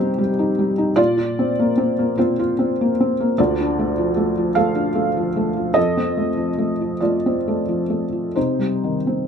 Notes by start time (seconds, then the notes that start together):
Already playing: C3 G3 C4 D#4 G4 C5
0.18 G3
0.39 D#4
0.59 G3
0.78 D#4
0.96 A#2 F4 D5
1.17 F4
1.39 C4
1.59 A#3
1.78 C4
1.99 A#3
2.18 C4 F4 C5
2.39 F4
2.59 C4
2.81 A#3
3.00 C4
3.20 A#3
3.38 D2 F4 D5
3.60 D4
3.79 A3
3.98 F3
4.17 A3
4.37 F3
4.55 A3 A4 F5
4.75 D4
4.95 A3
5.17 F3
5.36 A3
5.57 F3
5.74 F2 A4 D#5
5.97 C4
6.17 A3
6.37 F3
6.58 A3
6.81 F3
7.01 A3 F4 D5
7.26 C4
7.48 A3
7.68 F3
7.90 A3
8.12 F3
8.36 C3 D#4 C5
8.59 G3
8.84 D#3
9.07 C4